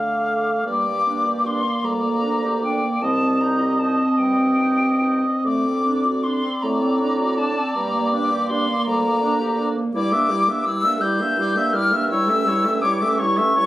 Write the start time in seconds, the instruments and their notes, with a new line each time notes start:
Already playing: bassoon D3, french horn A3, oboe F5, flute D6
0.66 bassoon G2, clarinet G3, french horn A#3, oboe D5, flute D6
0.87 clarinet A#3
1.07 clarinet D4
1.26 clarinet G4
1.45 clarinet D4, flute C6
1.64 clarinet A#3
1.84 bassoon D2, clarinet G3, flute A#5
2.03 clarinet A#3
2.22 clarinet D4
2.43 clarinet G4
2.63 clarinet D4, flute G5
2.83 clarinet A#3
3.01 bassoon C2, clarinet G3, french horn C4, oboe D#5, flute A5
3.22 clarinet C4
3.41 clarinet D#4, flute A#5
3.60 clarinet G4
3.79 clarinet D#4, flute A5
3.99 clarinet C4
4.18 bassoon G2, clarinet G3, flute G5
4.38 clarinet C4
4.58 clarinet D#4
4.80 clarinet G4
5.01 clarinet D#4
5.24 clarinet C4
5.44 bassoon D2, clarinet A3, oboe D5, flute D6
5.66 clarinet C4
5.85 clarinet D4
6.05 clarinet F#4
6.23 clarinet D4, flute C6
6.43 clarinet C4
6.62 bassoon A2, clarinet A3, flute A#5
6.81 clarinet C4
7.00 clarinet D4
7.19 clarinet F#4
7.38 clarinet D4, flute A5
7.57 clarinet C4
7.74 bassoon G2, clarinet G3, french horn A#3, flute A#5
7.95 clarinet A#3
8.12 clarinet D4, flute D6
8.31 clarinet G4
8.49 clarinet D4, flute C6
8.68 clarinet A#3
8.86 bassoon D2, clarinet G3, flute A#5
9.04 clarinet A#3
9.22 clarinet D4
9.41 clarinet G4
9.59 clarinet D4
9.77 clarinet A#3
9.93 bassoon G2, french horn G3, clarinet E4, oboe D5, flute D6
10.12 french horn A#3, clarinet D4, oboe E5
10.30 french horn G3, clarinet E4, oboe D5
10.48 french horn A#3, clarinet D4, oboe E5
10.66 french horn G3, clarinet E4, oboe D5, flute E6
10.84 french horn A#3, clarinet D4, oboe E5
11.00 french horn G3, clarinet E4, oboe D5, flute G6
11.20 french horn A#3, clarinet D4, oboe E5
11.38 french horn G3, clarinet E4, oboe D5
11.56 french horn A#3, clarinet D4, oboe E5
11.73 french horn G3, clarinet E4, oboe D5, flute F6
11.91 french horn A#3, clarinet D4, oboe E5
12.08 french horn G3, clarinet E4, oboe C#5, flute E6
12.28 french horn A3, clarinet C#4, oboe E5
12.46 french horn G3, clarinet E4, oboe C#5
12.64 french horn A3, clarinet C#4, oboe E5
12.82 french horn G3, oboe C#5, flute D6
12.86 clarinet E4
13.01 french horn A3, clarinet C#4, oboe E5
13.18 french horn G3, clarinet E4, oboe C#5, flute C#6
13.37 french horn A3, clarinet C#4, oboe E5
13.56 french horn G3, clarinet E4, oboe C#5